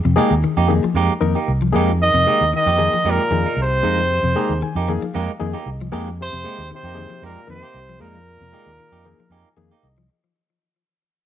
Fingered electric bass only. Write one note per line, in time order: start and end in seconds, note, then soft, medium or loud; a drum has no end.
0.05 0.16 F2 medium
0.31 0.42 D#2 medium
0.57 0.81 F2 loud
0.84 muted fingered electric bass stroke soft
0.94 1.08 F2 medium
1.21 1.34 F2 medium
1.48 1.72 C2 medium
1.75 2.11 F2 medium
2.13 2.25 F2 medium
2.41 2.52 D#2 medium
2.66 2.90 F2 loud
2.92 muted fingered electric bass stroke soft
3.04 3.17 F2 medium
3.31 3.43 F2 medium
3.56 3.81 C2 medium
3.83 4.19 F2 medium
4.22 4.34 F2 medium
4.49 4.60 D#2 medium
4.75 4.99 F2 loud
5.02 muted fingered electric bass stroke soft
5.15 5.27 F2 medium
5.41 5.53 F2 medium
5.66 5.90 C2 medium
5.93 6.29 F2 medium
6.33 6.44 F2 medium
6.58 6.70 D#2 medium
6.83 7.08 F2 loud
7.22 7.35 F2 medium
7.48 7.61 F2 medium
7.74 7.98 C2 medium
8.00 8.37 F2 medium
8.40 8.52 F2 medium
8.66 8.78 D#2 medium
8.92 9.16 F2 loud
9.18 muted fingered electric bass stroke soft
9.30 9.43 F2 medium
9.57 9.70 F2 medium
9.83 10.07 C2 medium